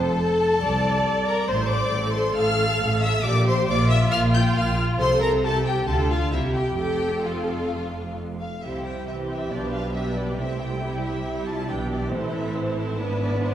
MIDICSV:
0, 0, Header, 1, 6, 480
1, 0, Start_track
1, 0, Key_signature, -1, "major"
1, 0, Tempo, 437637
1, 1631, Time_signature, 4, 2, 24, 8
1, 6446, Tempo, 455581
1, 9339, Key_signature, 0, "major"
1, 9806, Tempo, 435414
1, 14740, End_track
2, 0, Start_track
2, 0, Title_t, "Violin section"
2, 0, Program_c, 0, 48
2, 0, Note_on_c, 0, 81, 98
2, 1388, Note_on_c, 0, 82, 79
2, 1389, Note_off_c, 0, 81, 0
2, 1618, Note_on_c, 0, 84, 88
2, 1627, Note_off_c, 0, 82, 0
2, 1843, Note_on_c, 0, 86, 90
2, 1860, Note_off_c, 0, 84, 0
2, 2323, Note_on_c, 0, 84, 97
2, 2337, Note_off_c, 0, 86, 0
2, 2582, Note_on_c, 0, 89, 115
2, 2584, Note_off_c, 0, 84, 0
2, 3298, Note_off_c, 0, 89, 0
2, 3315, Note_on_c, 0, 88, 101
2, 3546, Note_on_c, 0, 86, 113
2, 3553, Note_off_c, 0, 88, 0
2, 3794, Note_off_c, 0, 86, 0
2, 3809, Note_on_c, 0, 84, 97
2, 4035, Note_on_c, 0, 86, 100
2, 4040, Note_off_c, 0, 84, 0
2, 4273, Note_off_c, 0, 86, 0
2, 4282, Note_on_c, 0, 88, 103
2, 4370, Note_off_c, 0, 88, 0
2, 4518, Note_on_c, 0, 89, 114
2, 4605, Note_off_c, 0, 89, 0
2, 4768, Note_on_c, 0, 91, 108
2, 4856, Note_off_c, 0, 91, 0
2, 5008, Note_on_c, 0, 89, 93
2, 5241, Note_off_c, 0, 89, 0
2, 5487, Note_on_c, 0, 84, 112
2, 5709, Note_off_c, 0, 84, 0
2, 5729, Note_on_c, 0, 82, 103
2, 5817, Note_off_c, 0, 82, 0
2, 5972, Note_on_c, 0, 81, 103
2, 6202, Note_on_c, 0, 79, 86
2, 6205, Note_off_c, 0, 81, 0
2, 6435, Note_on_c, 0, 81, 97
2, 6441, Note_off_c, 0, 79, 0
2, 6520, Note_off_c, 0, 81, 0
2, 6680, Note_on_c, 0, 77, 86
2, 6913, Note_off_c, 0, 77, 0
2, 6916, Note_on_c, 0, 76, 76
2, 7001, Note_off_c, 0, 76, 0
2, 7146, Note_on_c, 0, 79, 69
2, 7379, Note_off_c, 0, 79, 0
2, 7392, Note_on_c, 0, 79, 85
2, 7874, Note_off_c, 0, 79, 0
2, 7882, Note_on_c, 0, 77, 66
2, 8855, Note_off_c, 0, 77, 0
2, 9095, Note_on_c, 0, 77, 66
2, 9320, Note_off_c, 0, 77, 0
2, 9332, Note_on_c, 0, 76, 67
2, 9570, Note_off_c, 0, 76, 0
2, 9573, Note_on_c, 0, 79, 54
2, 9802, Note_off_c, 0, 79, 0
2, 9817, Note_on_c, 0, 76, 54
2, 9905, Note_off_c, 0, 76, 0
2, 10070, Note_on_c, 0, 76, 58
2, 10297, Note_on_c, 0, 74, 65
2, 10298, Note_off_c, 0, 76, 0
2, 10529, Note_on_c, 0, 77, 67
2, 10537, Note_off_c, 0, 74, 0
2, 10766, Note_on_c, 0, 76, 65
2, 10768, Note_off_c, 0, 77, 0
2, 11008, Note_off_c, 0, 76, 0
2, 11020, Note_on_c, 0, 74, 56
2, 11255, Note_on_c, 0, 76, 68
2, 11261, Note_off_c, 0, 74, 0
2, 11493, Note_off_c, 0, 76, 0
2, 11508, Note_on_c, 0, 79, 63
2, 11976, Note_on_c, 0, 76, 66
2, 11984, Note_off_c, 0, 79, 0
2, 12446, Note_off_c, 0, 76, 0
2, 12460, Note_on_c, 0, 81, 69
2, 12698, Note_off_c, 0, 81, 0
2, 12698, Note_on_c, 0, 79, 63
2, 12937, Note_off_c, 0, 79, 0
2, 12937, Note_on_c, 0, 74, 57
2, 13165, Note_on_c, 0, 72, 62
2, 13171, Note_off_c, 0, 74, 0
2, 13408, Note_off_c, 0, 72, 0
2, 13416, Note_on_c, 0, 76, 63
2, 13654, Note_off_c, 0, 76, 0
2, 13656, Note_on_c, 0, 72, 71
2, 13895, Note_off_c, 0, 72, 0
2, 13906, Note_on_c, 0, 72, 65
2, 14135, Note_off_c, 0, 72, 0
2, 14153, Note_on_c, 0, 71, 73
2, 14381, Note_off_c, 0, 71, 0
2, 14394, Note_on_c, 0, 74, 73
2, 14617, Note_on_c, 0, 72, 70
2, 14620, Note_off_c, 0, 74, 0
2, 14740, Note_off_c, 0, 72, 0
2, 14740, End_track
3, 0, Start_track
3, 0, Title_t, "Violin section"
3, 0, Program_c, 1, 48
3, 0, Note_on_c, 1, 69, 83
3, 1391, Note_on_c, 1, 70, 82
3, 1396, Note_off_c, 1, 69, 0
3, 1624, Note_off_c, 1, 70, 0
3, 1624, Note_on_c, 1, 72, 73
3, 1858, Note_off_c, 1, 72, 0
3, 1866, Note_on_c, 1, 74, 76
3, 2348, Note_off_c, 1, 74, 0
3, 2348, Note_on_c, 1, 72, 78
3, 2436, Note_off_c, 1, 72, 0
3, 2589, Note_on_c, 1, 77, 90
3, 3301, Note_off_c, 1, 77, 0
3, 3314, Note_on_c, 1, 76, 88
3, 3558, Note_off_c, 1, 76, 0
3, 3561, Note_on_c, 1, 74, 85
3, 3802, Note_off_c, 1, 74, 0
3, 3807, Note_on_c, 1, 72, 82
3, 4039, Note_off_c, 1, 72, 0
3, 4048, Note_on_c, 1, 74, 96
3, 4271, Note_on_c, 1, 76, 86
3, 4284, Note_off_c, 1, 74, 0
3, 4508, Note_on_c, 1, 77, 91
3, 4510, Note_off_c, 1, 76, 0
3, 4595, Note_off_c, 1, 77, 0
3, 4752, Note_on_c, 1, 79, 90
3, 4992, Note_off_c, 1, 79, 0
3, 5008, Note_on_c, 1, 77, 76
3, 5246, Note_off_c, 1, 77, 0
3, 5477, Note_on_c, 1, 72, 91
3, 5703, Note_off_c, 1, 72, 0
3, 5711, Note_on_c, 1, 70, 81
3, 5799, Note_off_c, 1, 70, 0
3, 5975, Note_on_c, 1, 69, 79
3, 6207, Note_off_c, 1, 69, 0
3, 6211, Note_on_c, 1, 67, 71
3, 6450, Note_off_c, 1, 67, 0
3, 6450, Note_on_c, 1, 69, 86
3, 6678, Note_off_c, 1, 69, 0
3, 6699, Note_on_c, 1, 65, 76
3, 6927, Note_off_c, 1, 65, 0
3, 6929, Note_on_c, 1, 64, 63
3, 7159, Note_off_c, 1, 64, 0
3, 7168, Note_on_c, 1, 67, 72
3, 7386, Note_off_c, 1, 67, 0
3, 7399, Note_on_c, 1, 67, 78
3, 7878, Note_off_c, 1, 67, 0
3, 7898, Note_on_c, 1, 65, 59
3, 8863, Note_off_c, 1, 65, 0
3, 9339, Note_on_c, 1, 67, 41
3, 9342, Note_on_c, 1, 64, 37
3, 9776, Note_off_c, 1, 64, 0
3, 9802, Note_off_c, 1, 67, 0
3, 9815, Note_on_c, 1, 67, 45
3, 10303, Note_on_c, 1, 71, 38
3, 10758, Note_off_c, 1, 71, 0
3, 10759, Note_off_c, 1, 67, 0
3, 10771, Note_on_c, 1, 71, 37
3, 10772, Note_on_c, 1, 67, 40
3, 11247, Note_off_c, 1, 71, 0
3, 11248, Note_off_c, 1, 67, 0
3, 11261, Note_on_c, 1, 67, 44
3, 11266, Note_on_c, 1, 64, 38
3, 11717, Note_off_c, 1, 67, 0
3, 11725, Note_off_c, 1, 64, 0
3, 11730, Note_on_c, 1, 67, 46
3, 11738, Note_on_c, 1, 64, 42
3, 12209, Note_off_c, 1, 64, 0
3, 12216, Note_off_c, 1, 67, 0
3, 12230, Note_on_c, 1, 67, 45
3, 12462, Note_on_c, 1, 65, 51
3, 12463, Note_off_c, 1, 67, 0
3, 12695, Note_on_c, 1, 67, 43
3, 12699, Note_off_c, 1, 65, 0
3, 12702, Note_off_c, 1, 67, 0
3, 12702, Note_on_c, 1, 67, 43
3, 13159, Note_on_c, 1, 69, 44
3, 13160, Note_on_c, 1, 64, 53
3, 13168, Note_off_c, 1, 67, 0
3, 13630, Note_off_c, 1, 69, 0
3, 13643, Note_on_c, 1, 69, 44
3, 14118, Note_off_c, 1, 69, 0
3, 14121, Note_on_c, 1, 71, 53
3, 14740, Note_off_c, 1, 64, 0
3, 14740, Note_off_c, 1, 71, 0
3, 14740, End_track
4, 0, Start_track
4, 0, Title_t, "Viola section"
4, 0, Program_c, 2, 48
4, 0, Note_on_c, 2, 72, 71
4, 188, Note_on_c, 2, 69, 74
4, 202, Note_off_c, 2, 72, 0
4, 671, Note_off_c, 2, 69, 0
4, 677, Note_on_c, 2, 74, 88
4, 1611, Note_off_c, 2, 74, 0
4, 1622, Note_on_c, 2, 72, 70
4, 2099, Note_off_c, 2, 72, 0
4, 2103, Note_on_c, 2, 69, 85
4, 3561, Note_off_c, 2, 69, 0
4, 3564, Note_on_c, 2, 67, 72
4, 4043, Note_off_c, 2, 67, 0
4, 4053, Note_on_c, 2, 65, 89
4, 5460, Note_off_c, 2, 65, 0
4, 5485, Note_on_c, 2, 69, 80
4, 5965, Note_off_c, 2, 69, 0
4, 5970, Note_on_c, 2, 67, 64
4, 6449, Note_on_c, 2, 65, 62
4, 6451, Note_off_c, 2, 67, 0
4, 6917, Note_on_c, 2, 67, 65
4, 6919, Note_off_c, 2, 65, 0
4, 7394, Note_on_c, 2, 69, 73
4, 7401, Note_off_c, 2, 67, 0
4, 9097, Note_off_c, 2, 69, 0
4, 9337, Note_on_c, 2, 55, 36
4, 9340, Note_on_c, 2, 60, 37
4, 9774, Note_off_c, 2, 55, 0
4, 9775, Note_off_c, 2, 60, 0
4, 9813, Note_on_c, 2, 60, 41
4, 9816, Note_on_c, 2, 52, 40
4, 10286, Note_off_c, 2, 60, 0
4, 10297, Note_off_c, 2, 52, 0
4, 10305, Note_on_c, 2, 62, 39
4, 10308, Note_on_c, 2, 53, 42
4, 10773, Note_off_c, 2, 62, 0
4, 10783, Note_off_c, 2, 53, 0
4, 10785, Note_on_c, 2, 55, 41
4, 10787, Note_on_c, 2, 62, 46
4, 11255, Note_off_c, 2, 62, 0
4, 11260, Note_on_c, 2, 57, 38
4, 11260, Note_on_c, 2, 60, 42
4, 11264, Note_off_c, 2, 55, 0
4, 11731, Note_off_c, 2, 57, 0
4, 11735, Note_on_c, 2, 55, 43
4, 11740, Note_off_c, 2, 60, 0
4, 11743, Note_on_c, 2, 64, 42
4, 12204, Note_off_c, 2, 64, 0
4, 12205, Note_off_c, 2, 55, 0
4, 12217, Note_on_c, 2, 64, 44
4, 12218, Note_on_c, 2, 55, 43
4, 12686, Note_off_c, 2, 64, 0
4, 12687, Note_off_c, 2, 55, 0
4, 12693, Note_on_c, 2, 52, 53
4, 12699, Note_on_c, 2, 62, 49
4, 13171, Note_on_c, 2, 60, 47
4, 13176, Note_off_c, 2, 62, 0
4, 14112, Note_off_c, 2, 60, 0
4, 14127, Note_on_c, 2, 59, 54
4, 14128, Note_on_c, 2, 62, 53
4, 14131, Note_off_c, 2, 52, 0
4, 14740, Note_off_c, 2, 59, 0
4, 14740, Note_off_c, 2, 62, 0
4, 14740, End_track
5, 0, Start_track
5, 0, Title_t, "Cello section"
5, 0, Program_c, 3, 48
5, 0, Note_on_c, 3, 41, 80
5, 120, Note_off_c, 3, 41, 0
5, 668, Note_on_c, 3, 36, 70
5, 1071, Note_off_c, 3, 36, 0
5, 1636, Note_on_c, 3, 45, 80
5, 2049, Note_off_c, 3, 45, 0
5, 2102, Note_on_c, 3, 45, 74
5, 2538, Note_off_c, 3, 45, 0
5, 2592, Note_on_c, 3, 45, 73
5, 3022, Note_off_c, 3, 45, 0
5, 3084, Note_on_c, 3, 45, 75
5, 3505, Note_off_c, 3, 45, 0
5, 3555, Note_on_c, 3, 46, 88
5, 3982, Note_off_c, 3, 46, 0
5, 4039, Note_on_c, 3, 46, 68
5, 4462, Note_off_c, 3, 46, 0
5, 4522, Note_on_c, 3, 46, 78
5, 4944, Note_off_c, 3, 46, 0
5, 5001, Note_on_c, 3, 46, 72
5, 5427, Note_off_c, 3, 46, 0
5, 5490, Note_on_c, 3, 48, 73
5, 6408, Note_off_c, 3, 48, 0
5, 6447, Note_on_c, 3, 50, 62
5, 6918, Note_off_c, 3, 50, 0
5, 6925, Note_on_c, 3, 48, 61
5, 7398, Note_on_c, 3, 41, 72
5, 7405, Note_off_c, 3, 48, 0
5, 9086, Note_off_c, 3, 41, 0
5, 9340, Note_on_c, 3, 48, 45
5, 10250, Note_off_c, 3, 48, 0
5, 10302, Note_on_c, 3, 47, 43
5, 11245, Note_off_c, 3, 47, 0
5, 11262, Note_on_c, 3, 48, 49
5, 12695, Note_on_c, 3, 47, 51
5, 12698, Note_off_c, 3, 48, 0
5, 13174, Note_off_c, 3, 47, 0
5, 13178, Note_on_c, 3, 45, 59
5, 14134, Note_off_c, 3, 45, 0
5, 14136, Note_on_c, 3, 44, 52
5, 14740, Note_off_c, 3, 44, 0
5, 14740, End_track
6, 0, Start_track
6, 0, Title_t, "Double bass section"
6, 0, Program_c, 4, 48
6, 0, Note_on_c, 4, 29, 70
6, 125, Note_off_c, 4, 29, 0
6, 675, Note_on_c, 4, 36, 73
6, 1075, Note_off_c, 4, 36, 0
6, 1629, Note_on_c, 4, 33, 69
6, 2046, Note_off_c, 4, 33, 0
6, 2100, Note_on_c, 4, 33, 69
6, 2537, Note_off_c, 4, 33, 0
6, 2591, Note_on_c, 4, 33, 75
6, 3021, Note_off_c, 4, 33, 0
6, 3083, Note_on_c, 4, 33, 79
6, 3505, Note_off_c, 4, 33, 0
6, 3563, Note_on_c, 4, 34, 72
6, 3986, Note_off_c, 4, 34, 0
6, 4034, Note_on_c, 4, 34, 74
6, 4459, Note_off_c, 4, 34, 0
6, 4525, Note_on_c, 4, 34, 88
6, 4946, Note_off_c, 4, 34, 0
6, 5008, Note_on_c, 4, 34, 76
6, 5430, Note_off_c, 4, 34, 0
6, 5492, Note_on_c, 4, 36, 67
6, 6408, Note_off_c, 4, 36, 0
6, 6451, Note_on_c, 4, 38, 66
6, 6917, Note_on_c, 4, 36, 61
6, 6921, Note_off_c, 4, 38, 0
6, 7397, Note_on_c, 4, 29, 55
6, 7401, Note_off_c, 4, 36, 0
6, 9086, Note_off_c, 4, 29, 0
6, 9341, Note_on_c, 4, 36, 41
6, 10250, Note_off_c, 4, 36, 0
6, 10301, Note_on_c, 4, 35, 50
6, 11244, Note_off_c, 4, 35, 0
6, 11264, Note_on_c, 4, 36, 44
6, 12700, Note_off_c, 4, 36, 0
6, 12702, Note_on_c, 4, 35, 48
6, 13178, Note_off_c, 4, 35, 0
6, 13180, Note_on_c, 4, 33, 49
6, 14135, Note_off_c, 4, 33, 0
6, 14138, Note_on_c, 4, 32, 52
6, 14740, Note_off_c, 4, 32, 0
6, 14740, End_track
0, 0, End_of_file